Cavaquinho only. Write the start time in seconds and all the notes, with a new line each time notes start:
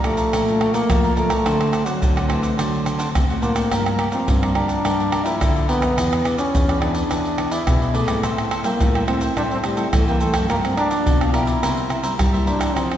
0.04 A4 D5 F5 A#5
0.17 D5 F5 A#5
0.33 A4 D5 F5 A#5
0.60 A4 D5 F5 A#5
0.74 A4 D5 F5 A#5
1.04 D5 F5 A#5
1.16 A4 D5 F5 A#5
1.29 D5 F5 A#5
1.45 D4 C5 D5 F#5
1.72 D4 C5 D5 F#5
1.85 C5 D5 F#5
2.16 C5 D5 F#5
2.28 D4 C5 D5 F#5
2.42 C5 D5 F#5
2.57 D4 C5 D5 F#5
2.85 D4 C5 D5 F#5
2.98 D4 C5 D5 F#5
3.29 C5 D5 F#5
3.42 D4 C5 D5 F#5
3.55 C5 D5 F#5
3.71 G4 A#4 D5 F5
3.98 G4 A#4 D5 F5
4.11 A#4 D5 F5
4.42 A#4 D5 F5
4.55 G4 A#4 D5 F5
4.68 A#4 D5 F5
4.84 G4 A#4 D5 F5
5.11 G4 A#4 D5 F5
5.25 G4 A#4 D5 F5
5.55 A#4 D5 F5
5.68 G4 A#4 D5 F5
5.81 A#4 D5 F5
5.97 E4 G#4 B4 D5
6.24 E4 G#4 B4 D5
6.38 G#4 B4 D5
6.68 G#4 B4 D5
6.80 E4 G#4 B4 D5
6.94 G#4 B4 D5
7.10 E4 G#4 B4 D5
7.38 E4 G#4 B4 D5
7.52 E4 G#4 B4 D5
7.82 G#4 B4 D5
7.94 E4 G#4 B4 D5
8.07 G#4 B4 D5
8.23 A4 C5 E5 G5
8.51 A4 C5 E5 G5
8.64 C5 E5 G5
8.95 C5 E5 G5
9.07 A4 C5 E5 G5
9.21 C5 E5 G5
9.37 A4 C5 E5 G5
9.64 A4 C5 E5 G5
9.77 A4 C5 E5 G5
10.08 C5 E5 G5
10.20 A4 C5 E5 G5
10.33 C5 E5 G5
10.49 G4 A#4 D5 F5
10.77 G4 A#4 D5 F5
10.90 A#4 D5 F5
11.20 A#4 D5 F5
11.33 G4 A#4 D5 F5
11.46 A#4 D5 F5
11.62 E4 A#4 C5 E5
11.89 E4 A#4 C5 E5
12.03 E4 A#4 C5 E5
12.33 A#4 C5 E5
12.46 E4 A#4 C5 E5
12.59 A#4 C5 E5
12.75 D#4 G#4 C5 F5